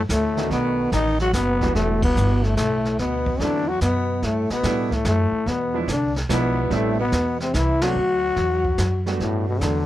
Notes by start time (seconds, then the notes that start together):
0.09 D2 A2 A3, kick, snare, hi-hat pedal
0.37 D#3 A3 B3 D4 F#4, snare
0.50 B1 B2 B3, brush sweep, kick, snare
0.92 A1 D#3 D#4, kick, snare, hi-hat pedal
1.19 F#3 F#4, snare
1.33 F#1 B2 B3, kick, snare, hi-hat pedal
1.61 E3 G3 B3 D4 F#4, kick, snare
1.75 E1 A2 A3, brush sweep, kick, snare
2.02 B2 B3, kick, ride
2.15 G1 E3 G3 B3 D4 F#4, hi-hat pedal
2.44 A2 A3, snare
2.57 B1 A2 A3, kick, snare, hi-hat pedal
2.85 snare
2.99 D2 B2 B3, brush sweep, kick, snare
3.26 kick
3.40 E2 D3 F#3 A3 B3 C4 D4 E4, kick, snare
3.68 F#3 F#4
3.81 F#2 B2 B3, kick, snare, hi-hat pedal
4.22 G2 A2 A3, brush sweep, kick, snare
4.50 B2 B3, muted upright bass stroke, snare
4.63 A2 G3 A3 B3 D4 E4, kick, snare, hi-hat pedal
4.91 A2 A3, kick, snare
5.05 F#2 A2 A3, kick, snare, hi-hat pedal
5.32 muted upright bass stroke
5.46 E2 B2 B3, brush sweep, kick, snare
5.74 F3 G#3 B3 D4 E4
5.88 C2 D3 D4, kick, snare, hi-hat pedal
6.16 snare
6.29 B1 B2 F3 G#3 B3 D4 E4, kick, snare, hi-hat pedal
6.70 A1 A2 G3 A3 B3 C4 D4 E4, brush sweep, kick, snare
6.99 B2 B3
7.12 E2, kick, snare, hi-hat pedal
7.40 C3 C4, snare
7.54 C2 E3 E4, kick, snare, hi-hat pedal
7.81 F#3 A3 B3 C4 D4 F#4, snare, ride
7.95 D2, brush sweep
8.36 E2, kick, snare
8.64 kick
8.78 F#2, snare, hi-hat pedal
9.06 G3 A3 B3 D4 F#4, snare
9.20 G2 A2, brush sweep, kick, snare
9.48 B2
9.60 E2 D3 F#3 A3 B3 D4, kick, snare, hi-hat pedal